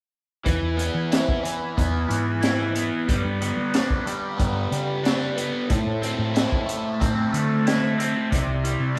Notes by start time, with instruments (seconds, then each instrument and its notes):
0.44 fingered electric bass E2, overdriven electric guitar E3, transistor combo organ B4 E5 G#5 B5, kick, closed hi-hat
0.62 fingered electric bass E2
0.77 overdriven electric guitar B3, closed hi-hat
0.94 fingered electric bass E3
1.12 overdriven electric guitar E4, snare, closed hi-hat
1.29 kick
1.43 overdriven electric guitar E3, closed hi-hat
1.77 fingered electric bass E2, overdriven electric guitar B3, kick, closed hi-hat
2.09 fingered electric bass G#2, overdriven electric guitar E3, closed hi-hat
2.42 overdriven electric guitar E4, snare, closed hi-hat
2.75 overdriven electric guitar B3, closed hi-hat
3.08 fingered electric bass G2, overdriven electric guitar G3, transistor combo organ D5 G5, kick, closed hi-hat
3.24 fingered electric bass G2
3.41 overdriven electric guitar B3, closed hi-hat
3.57 fingered electric bass G3
3.74 overdriven electric guitar D4, snare, closed hi-hat
3.90 kick
4.06 overdriven electric guitar G3, closed hi-hat
4.38 fingered electric bass G2, overdriven electric guitar B3, kick, closed hi-hat
4.72 fingered electric bass C#3, overdriven electric guitar G3, closed hi-hat
5.04 overdriven electric guitar D4, snare, closed hi-hat
5.36 overdriven electric guitar B3, closed hi-hat
5.69 overdriven electric guitar A2, fingered electric bass A2, transistor combo organ C5 E5 A5, kick, closed hi-hat
5.86 fingered electric bass A2
6.02 overdriven electric guitar C4, closed hi-hat
6.19 fingered electric bass A2
6.35 overdriven electric guitar E4, snare, closed hi-hat
6.52 kick
6.67 overdriven electric guitar A3, closed hi-hat
7.00 fingered electric bass A2, overdriven electric guitar C4, kick, closed hi-hat
7.32 fingered electric bass D3, overdriven electric guitar A3, closed hi-hat
7.67 overdriven electric guitar E4, snare, closed hi-hat
7.98 overdriven electric guitar C4, closed hi-hat
8.30 fingered electric bass C2, overdriven electric guitar C3, transistor combo organ D5 G5 C6, kick, closed hi-hat
8.47 fingered electric bass C2
8.64 overdriven electric guitar G3, closed hi-hat
8.80 fingered electric bass C3
8.95 overdriven electric guitar D4